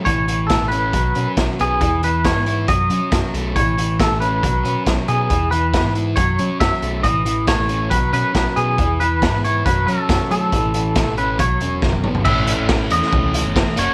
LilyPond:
<<
  \new Staff \with { instrumentName = "Clean electric guitar" } { \time 4/4 \key a \lydian \tempo 4 = 138 cis''4 a'8 b'4. r8 gis'8~ | gis'8 b'8 cis''4 dis''4. r8 | cis''4 a'8 b'4. r8 gis'8~ | gis'8 b'4 r8 cis''4 e''4 |
dis''4 cis''4 b'8 b'4 gis'8~ | gis'8 b'4 cis''8 b'8 a'4 a'8~ | a'4. b'8 cis''4 r4 | e''4 r8 dis''2 cis''8 | }
  \new Staff \with { instrumentName = "Overdriven electric guitar" } { \time 4/4 \key a \lydian r1 | r1 | r1 | r1 |
r1 | r1 | r1 | <a, e a cis' e'>4. <a, e a cis' e'>2 <fis ais cis' fis'>8 | }
  \new Staff \with { instrumentName = "Overdriven electric guitar" } { \time 4/4 \key a \lydian e8 e8 a8 cis'8 fis8 cis'8 fis8 b8 | e8 e8 b8 e'8 fis8 cis'8 fis8 a8 | e8 e8 a8 cis'8 fis8 cis'8 fis8 b8 | e8 e8 b8 e'8 fis8 cis'8 fis8 a8 |
e8 e8 a8 cis'8 fis8 cis'8 fis8 b8 | e8 e8 b8 e'8 fis8 cis'8 fis8 a8 | e8 e8 a8 cis'8 fis8 cis'8 fis8 b8 | <e a cis'>2.~ <e a cis'>8 <ais cis' fis'>8 | }
  \new Staff \with { instrumentName = "Picked electric bass" } { \clef bass \time 4/4 \key a \lydian a,,4~ a,,16 a,,8. b,,8 b,16 r16 b,,16 r16 b,,8 | e,4~ e,16 gis,8. fis,8 fis16 r16 fis,16 r16 b,,8 | a,,4~ a,,16 a,,8. b,,8 b,16 r16 b,,16 r16 b,8 | e,4~ e,16 gis,8. fis,8 fis16 r16 fis,16 r16 b,,8 |
a,,4~ a,,16 a,,8. b,,8 b,16 r16 b,,16 r16 b,8 | e,4~ e,16 gis,8. fis,8 fis16 r16 fis,16 r16 fis8 | a,,4~ a,,16 a,,8. b,,8 e,,8 fis,,8 gis,,8 | a,,8. a,,8. e,16 r16 cis,8. g,,8 r16 fis,,16 r16 | }
  \new DrumStaff \with { instrumentName = "Drums" } \drummode { \time 4/4 <hh bd>8 hh8 <hh bd sn>8 hh8 <hh bd>8 hh8 <hh bd sn>8 hh8 | <hh bd>8 hh8 <hh bd sn>8 hh8 <hh bd>8 hh8 <hh bd sn>8 hh8 | <hh bd>8 hh8 <hh bd sn>8 hh8 <hh bd>8 hh8 <hh bd sn>8 hh8 | <hh bd>8 hh8 <hh bd sn>8 hh8 <hh bd>8 hh8 <hh bd sn>8 hh8 |
<hh bd>8 hh8 <hh bd sn>8 hh8 <hh bd>8 hh8 <hh bd sn>8 hh8 | <hh bd>8 hh8 <hh bd sn>8 hh8 <hh bd>8 hh8 <hh bd sn>8 hh8 | <hh bd>8 hh8 <hh bd sn>8 hh8 <hh bd>8 hh8 <bd sn>16 tommh16 toml16 tomfh16 | <cymc bd>8 hh8 <bd sn>8 hh16 sn16 bd8 hh8 <bd sn>8 hh8 | }
>>